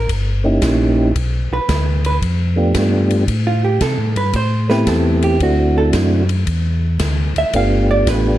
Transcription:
0.09 tonewheel organ G1, kick, ride
0.44 tonewheel organ A#3 C#4 D#4 E4 G4
0.61 tonewheel organ A#1, kick, snare, hi-hat pedal, ride
1.15 tonewheel organ B1, kick, ride
1.51 tonewheel organ B1, hollow-body jazz guitar B4
1.68 tonewheel organ D2, kick, snare, hi-hat pedal, ride
2.05 hollow-body jazz guitar B4, ride
2.22 tonewheel organ F2, kick, ride
2.56 tonewheel organ A3 B3 D4 F4 G4
2.75 tonewheel organ G2, kick, snare, hi-hat pedal, ride
3.11 ride
3.27 tonewheel organ A2, kick, ride
3.47 hollow-body jazz guitar F4
3.65 hollow-body jazz guitar G4
3.81 tonewheel organ C3, hollow-body jazz guitar A4, kick, snare, hi-hat pedal, ride
3.98 tonewheel organ A2
4.16 tonewheel organ G2, hollow-body jazz guitar B4, ride
4.33 tonewheel organ A2, hollow-body jazz guitar C5, kick, ride
4.69 tonewheel organ A3 B3 C4 E4 G4, hollow-body jazz guitar B4, snare
4.87 tonewheel organ E2, hollow-body jazz guitar A4, kick, snare, hi-hat pedal, ride
5.22 hollow-body jazz guitar G4, ride
5.40 tonewheel organ D2 A3 C4 D4 E4 F#4, hollow-body jazz guitar F#4, kick, ride
5.78 hollow-body jazz guitar A4
5.93 tonewheel organ F#2, kick, snare, hi-hat pedal, ride
6.29 ride
6.46 tonewheel organ E2, kick, ride
6.99 tonewheel organ D2, kick, snare, hi-hat pedal, ride
7.36 tonewheel organ D2, hollow-body jazz guitar E5, ride
7.53 tonewheel organ G1 A3 B3 D4 F4 G4, hollow-body jazz guitar F5, kick, ride
7.91 hollow-body jazz guitar D5
8.06 tonewheel organ A1, hollow-body jazz guitar B4, kick, snare, hi-hat pedal, ride

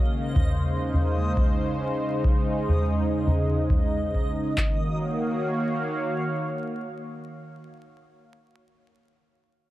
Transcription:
Already playing: analog synth pad C#3 A#3 F5, synth texture D#5
0.11 analog synth pad G#3
0.20 analog synth pad C5
0.36 kick, mid tom
0.66 analog synth pad D#4
0.94 mid tom
1.37 kick
2.24 kick
2.69 mid tom
3.27 mid tom
3.70 kick, mid tom
4.15 kick
4.57 analog synth pad D#3, kick, clap
4.67 analog synth pad A#3
4.76 analog synth pad F#4
4.84 analog synth pad C#5
4.93 analog synth pad F5

